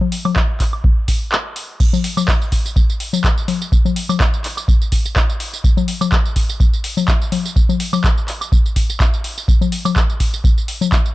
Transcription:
0.01 low conga
0.12 open hi-hat
0.25 low conga, high woodblock
0.36 kick, clap
0.60 kick, clap, open hi-hat
0.73 high woodblock
0.84 kick
1.08 kick, open hi-hat
1.32 clap
1.56 open hi-hat
1.80 kick, tambourine, crash
1.93 tambourine, low conga
2.04 open hi-hat
2.17 tambourine, low conga, high woodblock
2.28 kick, clap, tambourine
2.42 tambourine
2.52 kick, open hi-hat
2.66 tambourine
2.76 kick, tambourine
2.90 tambourine
3.00 open hi-hat
3.13 tambourine, low conga
3.24 kick, clap, tambourine
3.38 tambourine
3.48 open hi-hat, low conga
3.62 tambourine
3.72 kick, tambourine
3.85 tambourine, low conga
3.96 open hi-hat
4.09 tambourine, low conga, high woodblock
4.20 kick, clap, tambourine
4.34 tambourine
4.44 clap, open hi-hat
4.57 tambourine, high woodblock
4.68 kick, tambourine
4.82 tambourine
4.92 kick, open hi-hat
5.06 tambourine
5.16 kick, clap, tambourine
5.30 tambourine
5.40 open hi-hat
5.54 tambourine
5.64 kick, tambourine
5.77 tambourine, low conga
5.88 open hi-hat
6.01 tambourine, low conga, high woodblock
6.12 kick, clap, tambourine
6.26 tambourine
6.36 kick, open hi-hat
6.49 tambourine
6.60 kick, tambourine
6.74 tambourine
6.84 open hi-hat
6.97 tambourine, low conga
7.08 kick, clap, tambourine
7.22 tambourine
7.32 open hi-hat, low conga
7.46 tambourine
7.56 kick, tambourine
7.69 tambourine, low conga
7.80 open hi-hat
7.93 tambourine, low conga, high woodblock
8.04 kick, clap, tambourine
8.18 tambourine
8.28 clap, open hi-hat
8.41 tambourine, high woodblock
8.52 kick, tambourine
8.66 tambourine
8.76 kick, open hi-hat
8.90 tambourine
9.00 kick, clap, tambourine
9.14 tambourine
9.24 open hi-hat
9.38 tambourine
9.48 kick, tambourine
9.61 tambourine, low conga
9.72 open hi-hat
9.85 tambourine, low conga, high woodblock
9.96 kick, clap, tambourine
10.10 tambourine
10.20 kick, open hi-hat
10.34 tambourine
10.44 kick, tambourine
10.58 tambourine
10.68 open hi-hat
10.81 tambourine, low conga
10.92 kick, clap, tambourine
11.06 tambourine

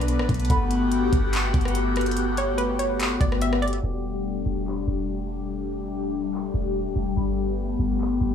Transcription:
Already playing: B1 D3 A3 B3 D4 D5 C#6
0.01 closed hi-hat
0.08 closed hi-hat
0.19 A1, cross-stick
0.29 B1, kick, closed hi-hat
0.34 closed hi-hat
0.40 closed hi-hat
0.45 closed hi-hat
0.50 G1 A3 F#4 G4 A4 F#5 B5, kick, closed hi-hat
0.71 closed hi-hat
0.92 closed hi-hat
1.13 G1, kick, closed hi-hat
1.33 clap, closed hi-hat
1.54 G1, kick, closed hi-hat
1.61 closed hi-hat
1.65 cross-stick, closed hi-hat
1.75 closed hi-hat
1.96 cross-stick, closed hi-hat
2.01 closed hi-hat
2.06 closed hi-hat
2.11 closed hi-hat
2.17 closed hi-hat
2.37 C#5, closed hi-hat
2.58 B4, closed hi-hat
2.79 C#5, closed hi-hat
3.00 clap, closed hi-hat
3.21 G1 D5, kick, closed hi-hat
3.32 cross-stick
3.42 E5, closed hi-hat
3.53 cross-stick
3.62 D5, closed hi-hat
3.68 closed hi-hat
3.73 closed hi-hat
3.78 closed hi-hat
3.83 E1 G3 A3 D4 G4 A4 F#5 G5 D6
4.46 E1
4.68 clap
4.87 E1
6.34 clap
6.54 E1
6.85 D1
6.96 E1
7.17 G1 B3 B5
7.79 G1
8.01 clap
8.21 G1

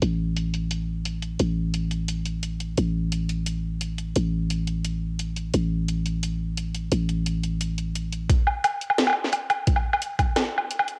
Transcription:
0.02 A1, closed hi-hat
0.36 closed hi-hat
0.54 closed hi-hat
0.71 closed hi-hat
1.05 closed hi-hat
1.22 closed hi-hat
1.40 A1, closed hi-hat
1.74 closed hi-hat
1.91 closed hi-hat
2.08 closed hi-hat
2.26 closed hi-hat
2.43 closed hi-hat
2.60 closed hi-hat
2.78 A1, closed hi-hat
3.12 closed hi-hat
3.29 closed hi-hat
3.47 closed hi-hat
3.81 closed hi-hat
3.98 closed hi-hat
4.16 A1, closed hi-hat
4.50 closed hi-hat
4.67 closed hi-hat
4.84 closed hi-hat
5.19 closed hi-hat
5.36 closed hi-hat
5.53 A1, closed hi-hat
5.88 closed hi-hat
6.05 closed hi-hat
6.23 closed hi-hat
6.57 closed hi-hat
6.74 closed hi-hat
6.92 A1, closed hi-hat
7.09 closed hi-hat
7.26 closed hi-hat
7.44 closed hi-hat
7.61 closed hi-hat
7.78 closed hi-hat
7.95 closed hi-hat
8.12 closed hi-hat
8.29 kick, closed hi-hat
8.47 low woodblock
8.64 closed hi-hat, low woodblock
8.81 closed hi-hat
8.90 low woodblock
8.98 snare, closed hi-hat
9.07 low woodblock
9.10 low woodblock
9.13 low woodblock
9.24 snare
9.33 closed hi-hat, low woodblock
9.50 closed hi-hat, low woodblock
9.67 kick, closed hi-hat
9.76 low woodblock
9.93 low woodblock
10.02 closed hi-hat
10.19 kick, closed hi-hat, low woodblock
10.36 snare, closed hi-hat, low woodblock
10.58 low woodblock
10.71 closed hi-hat
10.79 low woodblock
10.88 closed hi-hat

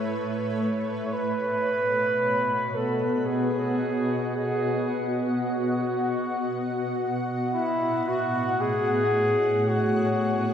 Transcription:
Already playing: A2 A3 B4 C#5 E5
1.05 C#5
1.11 B2 B4
1.31 B3
1.52 F#5
1.62 F#4
1.75 D#5
2.75 A4
3.26 G#4
4.36 G#4
5.41 F#4
7.52 A2 E4
8.08 A3 F#4
8.24 C#5
8.52 G#4
8.61 G#4
9.68 F#4

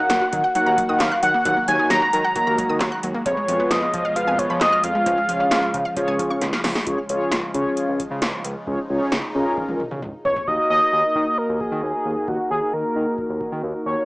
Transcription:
Already playing: D#3 F#3 A#3 D#4 F#4 A#4 F#5
0.10 D#2 F#3, snare, closed hi-hat
0.21 F#4
0.33 D#3 F#3, kick, closed hi-hat
0.44 F#5
0.55 F#3 A#3 D#4 F#4 A#4 F#5, closed hi-hat
0.66 D#2 A#5
0.78 F#3, kick, closed hi-hat
0.89 D#3 D#6
1.00 D#2 F#3 F5, snare, clap, closed hi-hat
1.12 F#6
1.23 D#2 F#3 F#5, closed hi-hat
1.34 A#3
1.45 D#2 F#3 G#3 A#3 D#4 F#4 A#4 F#5, kick, closed hi-hat
1.57 A#3
1.68 D#2 F#3 A#3 D#4 F#4 C#5 G#5, closed hi-hat
1.79 D#4
1.90 D#2 F#3 A#5, snare, closed hi-hat
2.02 F#4
2.13 D#3 F#3 A#5, closed hi-hat
2.24 F#5
2.36 F#3 A#3 D#4 F#4 A#4, kick, closed hi-hat
2.47 D#2 A#5
2.58 F#3, kick, closed hi-hat
2.69 D#3 D#6
2.81 D#2 F#3, snare, clap, closed hi-hat
2.92 F#6
3.03 D#2 F#3, closed hi-hat
3.14 A#3
3.26 F2 B2 F3 B3 F4 G#4 B4 C#5, kick, closed hi-hat
3.37 G#3
3.48 F2 F3 B3 F4 G#4 B4, closed hi-hat
3.60 B3
3.71 F2 F3 D#5, snare, closed hi-hat
3.82 F4
3.94 F3, kick, closed hi-hat
4.05 F5
4.16 F3 B3 F4 G#4 B4 F5, closed hi-hat
4.27 F2 G#5
4.39 F3 C#5, kick, closed hi-hat
4.50 F3 B5
4.61 F2 F3 D#5, snare, clap, closed hi-hat
4.72 F6
4.84 F2 F3 F5, closed hi-hat
4.95 G#3
5.06 C#2 C#3 F3 C#4 F4 G#4 C#5, kick, closed hi-hat
5.17 G#3
5.29 C#2 F3 C#4 F4 G#4 C#5, closed hi-hat
5.40 C#4
5.51 C#2 F3, snare, closed hi-hat
5.63 F4
5.74 C#3 F3, kick, closed hi-hat
5.85 F5
5.96 F3 C#4 F4 G#4 C#5, kick, closed hi-hat
6.08 C#2 G#5
6.19 F3, kick, closed hi-hat
6.30 C#3 C#6
6.41 C#2 F3, snare, closed hi-hat
6.53 F6, snare
6.64 C#2 F3, snare, open hi-hat
6.75 G#3, snare
6.87 C#2 C#3 F3 G#3 C#4 F4 G#4 C#5, kick, closed hi-hat
7.09 C#2 C#4 F4 G#4 C#5, closed hi-hat
7.32 C#2, snare, closed hi-hat
7.54 C#3 C#4 F4 G#4 C#5, kick, closed hi-hat
7.77 closed hi-hat
7.88 C#2
8.00 kick, closed hi-hat
8.11 C#3
8.22 C#2, snare, closed hi-hat
8.44 C#2, closed hi-hat
8.67 C#2 C#4 D#4 F4 G#4 C#5, kick
8.90 C#2 C#4 F4 G#4 C#5
9.12 C#2, snare
9.35 C#3 C#4 F4 G#4 A#4
9.57 kick, high tom
9.69 C#2, high tom
9.80 mid tom
9.91 C#3, mid tom
10.02 C#2, mid tom
10.25 C#2 C#5, floor tom
10.36 floor tom
10.48 D#2 A#3 D#4 F#4 A#4 D#5, kick
10.70 D#2 D#5
10.93 D#2
11.15 D#3, kick
11.38 A#4
11.49 D#2
11.60 G#4, kick
11.72 D#3
11.83 D#2
12.05 D#2
12.28 D#2 F#4, kick
12.51 D#2 G#4
12.73 D#2 A#4
12.96 D#3
13.18 kick
13.30 D#2
13.41 kick
13.52 D#3
13.63 D#2
13.86 D#2 C#5

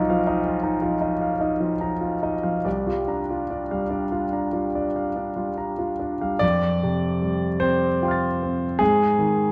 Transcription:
Already playing: B1 F3 D#4 F4 D#5 A#5
0.10 F3 F5
0.27 D#4 D#5
0.45 F4
0.63 D#4 A#5
0.82 F3 F4
1.01 D#4 D#5
1.21 F5
1.41 D#4 D#5
1.60 F3 F4
1.81 D#4 A#5
2.01 F4
2.23 D#4 D#5
2.43 F3 F5
2.65 C2 D5
2.87 G3 F4
3.08 D4 A#5
3.31 F4
3.50 D4 D5
3.71 G3 F5
3.90 D4 D5
4.12 F4
4.33 D4 A#5
4.53 G3 F4
4.75 D4 D5
4.96 F5
5.16 D4 D5
5.36 G3 F4
5.57 D4 A#5
5.79 F4
5.99 D4 D5
6.21 G3 F5
6.39 F2 D5
6.83 C3
7.22 G3
7.60 C4 C5
8.02 F4 G5 C6
8.08 F6 A6
8.43 C4
8.79 G#2 G#4
9.19 D#3

